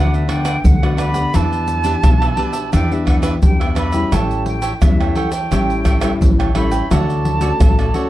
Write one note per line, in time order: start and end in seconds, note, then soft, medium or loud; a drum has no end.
0.00 0.54 D2 medium
0.00 0.61 D3 medium
0.00 0.23 B3 medium
0.00 0.23 D4 medium
0.00 0.26 D4 medium
0.00 0.24 F#4 medium
0.00 0.27 B4 medium
0.00 0.28 D5 medium
0.00 0.16 F#5 loud
0.00 0.28 F#5 medium
0.14 0.31 E5 medium
0.14 pandeiro soft
0.14 shaker soft
0.28 0.76 B3 medium
0.28 0.43 D4 soft
0.28 0.76 D4 soft
0.28 0.44 B4 soft
0.28 0.44 D5 soft
0.28 0.44 F#5 medium
0.28 0.67 G5 loud
0.28 pandeiro medium
0.28 tamborim medium
0.44 0.55 D4 medium
0.44 0.55 B4 medium
0.44 0.55 D5 medium
0.44 0.55 F#5 medium
0.44 pandeiro medium
0.44 tamborim medium
0.44 shaker medium
0.64 1.24 D2 medium
0.64 1.31 D3 medium
0.64 0.99 F#5 medium
0.64 pandeiro medium
0.64 shaker medium
0.64 surdo loud
0.82 1.12 B3 medium
0.82 1.12 D4 medium
0.82 1.12 F#4 medium
0.82 0.96 B4 soft
0.82 0.97 D5 soft
0.82 0.98 F#5 soft
0.82 pandeiro soft
0.82 tamborim medium
0.82 shaker soft
0.97 1.14 D4 medium
0.97 1.15 B4 medium
0.97 1.14 D5 medium
0.97 1.13 F#5 medium
0.97 1.37 B5 medium
0.97 pandeiro medium
0.97 tamborim medium
0.97 shaker medium
1.14 1.62 B3 medium
1.14 1.62 D4 medium
1.14 1.63 G4 medium
1.14 1.32 B4 soft
1.14 1.32 D5 soft
1.14 1.31 F#5 soft
1.14 pandeiro medium
1.14 shaker medium
1.34 1.94 E2 medium
1.34 2.01 E3 medium
1.34 1.83 D4 medium
1.34 1.83 G4 medium
1.34 1.84 B4 medium
1.34 1.84 E5 medium
1.34 2.74 A5 loud
1.34 pandeiro medium
1.34 tamborim medium
1.34 shaker medium
1.34 surdo medium
1.52 pandeiro soft
1.52 shaker soft
1.68 pandeiro medium
1.68 shaker medium
1.84 2.32 B3 medium
1.84 1.94 D4 medium
1.84 2.32 D4 medium
1.84 1.95 G4 medium
1.84 2.32 G4 medium
1.84 1.95 B4 medium
1.84 1.95 E5 medium
1.84 pandeiro medium
1.84 shaker medium
2.03 2.33 B1 medium
2.03 2.70 B2 medium
2.03 pandeiro medium
2.03 tamborim medium
2.03 shaker medium
2.03 surdo loud
2.22 2.36 G4 soft
2.22 2.37 B4 soft
2.22 2.38 E5 soft
2.22 pandeiro soft
2.22 tamborim medium
2.22 shaker soft
2.37 2.85 B3 medium
2.37 2.54 D4 medium
2.37 2.85 D4 medium
2.37 2.53 G4 medium
2.37 2.85 G4 medium
2.37 2.52 B4 medium
2.37 2.51 E5 medium
2.37 pandeiro medium
2.52 2.71 G4 soft
2.52 2.71 B4 soft
2.52 2.70 E5 soft
2.52 pandeiro medium
2.52 shaker medium
2.72 3.33 E2 medium
2.72 3.40 E3 medium
2.72 3.04 D4 medium
2.72 3.05 G4 medium
2.72 3.06 B4 medium
2.72 3.06 E5 medium
2.72 2.94 G5 loud
2.72 pandeiro medium
2.72 tamborim medium
2.72 shaker medium
2.72 surdo medium
2.92 3.38 B3 medium
2.92 3.38 D4 medium
2.92 3.38 G4 medium
2.92 3.07 E5 medium
2.92 pandeiro soft
2.92 shaker soft
3.05 3.21 D4 soft
3.05 3.21 G4 medium
3.05 3.22 B4 soft
3.05 3.22 E5 medium
3.05 3.16 F#5 medium
3.05 pandeiro medium
3.05 tamborim medium
3.05 surdo medium
3.22 3.33 D4 medium
3.22 3.33 G4 medium
3.22 3.33 B4 medium
3.22 3.33 E5 medium
3.22 pandeiro medium
3.22 tamborim medium
3.22 shaker medium
3.42 4.02 E2 medium
3.42 4.10 B2 soft
3.42 3.90 B3 medium
3.42 3.90 D4 medium
3.42 3.91 G4 medium
3.42 3.75 G5 medium
3.42 pandeiro medium
3.42 shaker medium
3.42 surdo medium
3.60 3.75 G4 soft
3.60 3.75 B4 soft
3.60 3.76 E5 soft
3.60 pandeiro soft
3.60 tamborim medium
3.60 shaker soft
3.75 3.93 D4 medium
3.75 3.93 G4 medium
3.75 3.92 B4 medium
3.75 3.91 E5 medium
3.75 4.14 B5 medium
3.75 pandeiro medium
3.75 tamborim medium
3.75 shaker medium
3.92 4.59 G3 medium
3.92 4.59 C#4 medium
3.92 4.59 E4 medium
3.92 4.11 G4 soft
3.92 4.10 B4 soft
3.92 4.10 E5 medium
3.92 pandeiro medium
3.92 shaker medium
4.12 4.71 A1 medium
4.12 4.79 A2 medium
4.12 4.61 G4 medium
4.12 4.61 A4 medium
4.12 4.61 C#5 medium
4.12 4.62 G5 medium
4.12 4.47 A5 medium
4.12 pandeiro medium
4.12 tamborim medium
4.12 shaker medium
4.12 surdo medium
4.31 pandeiro soft
4.31 shaker soft
4.46 4.85 G5 medium
4.46 pandeiro medium
4.62 4.72 G4 medium
4.62 4.73 A4 medium
4.62 4.73 C#5 medium
4.62 4.73 G5 medium
4.62 pandeiro medium
4.62 shaker medium
4.82 5.12 E2 medium
4.82 5.49 E3 medium
4.82 5.27 G3 medium
4.82 5.27 C#4 medium
4.82 5.28 E4 medium
4.82 5.18 E5 medium
4.82 pandeiro medium
4.82 tamborim medium
4.82 shaker medium
4.82 surdo loud
5.00 5.15 A4 soft
5.00 5.16 C#5 soft
5.00 5.16 G5 soft
5.00 pandeiro soft
5.00 tamborim medium
5.00 shaker soft
5.15 5.32 G4 medium
5.15 5.33 A4 medium
5.15 5.31 C#5 medium
5.15 5.32 F#5 medium
5.15 5.31 G5 medium
5.15 pandeiro medium
5.32 5.50 A4 soft
5.32 5.50 C#5 soft
5.32 5.49 G5 soft
5.32 6.24 G5 medium
5.32 pandeiro medium
5.32 shaker medium
5.51 6.11 A1 medium
5.51 6.18 A2 medium
5.51 5.99 G3 medium
5.51 5.99 C#4 medium
5.51 5.99 E4 medium
5.51 5.84 G4 medium
5.51 5.84 A4 medium
5.51 5.85 C#5 medium
5.51 5.86 G5 medium
5.51 pandeiro medium
5.51 tamborim medium
5.51 shaker medium
5.51 surdo medium
5.70 pandeiro soft
5.70 shaker soft
5.85 6.00 G4 soft
5.85 6.01 A4 medium
5.85 6.01 C#5 soft
5.85 6.01 G5 medium
5.85 pandeiro medium
5.85 tamborim medium
5.85 shaker medium
5.85 surdo medium
6.01 6.50 G3 medium
6.01 6.50 C#4 medium
6.01 6.50 E4 medium
6.01 6.12 G4 medium
6.01 6.12 A4 medium
6.01 6.12 C#5 medium
6.01 6.12 G5 medium
6.01 pandeiro medium
6.01 tamborim medium
6.01 shaker medium
6.21 6.80 A1 medium
6.21 6.88 E3 soft
6.21 pandeiro medium
6.21 shaker medium
6.21 surdo loud
6.39 6.55 A4 soft
6.39 6.55 C#5 soft
6.39 6.55 G5 soft
6.39 pandeiro soft
6.39 tamborim medium
6.39 shaker soft
6.55 6.85 G3 medium
6.55 6.85 C#4 medium
6.55 6.85 E4 medium
6.55 6.71 G4 medium
6.55 6.72 A4 medium
6.55 6.71 C#5 medium
6.55 6.70 G5 medium
6.55 6.93 B5 medium
6.55 pandeiro medium
6.55 tamborim medium
6.72 6.90 A4 soft
6.72 6.89 C#5 soft
6.72 6.89 G5 soft
6.72 pandeiro medium
6.72 shaker medium
6.91 7.50 D2 medium
6.91 7.57 D3 medium
6.91 7.37 A3 medium
6.91 7.40 F#4 medium
6.91 7.38 F#4 medium
6.91 7.40 A4 medium
6.91 7.40 C#5 medium
6.91 7.41 D5 medium
6.91 8.10 A5 medium
6.91 pandeiro medium
6.91 tamborim medium
6.91 shaker medium
6.91 surdo medium
7.10 pandeiro soft
7.10 shaker soft
7.25 pandeiro medium
7.40 7.88 A3 medium
7.40 7.89 C#4 medium
7.40 7.51 F#4 medium
7.40 7.89 F#4 medium
7.40 7.51 A4 medium
7.40 7.51 C#5 medium
7.40 7.52 D5 medium
7.40 pandeiro medium
7.40 shaker medium
7.60 7.90 A1 medium
7.60 8.10 A2 soft
7.60 pandeiro medium
7.60 tamborim medium
7.60 shaker medium
7.60 surdo loud
7.79 7.93 A4 soft
7.79 7.94 C#5 soft
7.79 7.94 D5 soft
7.79 pandeiro soft
7.79 tamborim medium
7.79 shaker soft
7.94 8.10 A3 soft
7.94 8.10 C#4 medium
7.94 8.10 F#4 medium
7.94 8.10 A4 medium
7.94 8.10 C#5 medium
7.94 8.09 D5 medium
7.94 pandeiro medium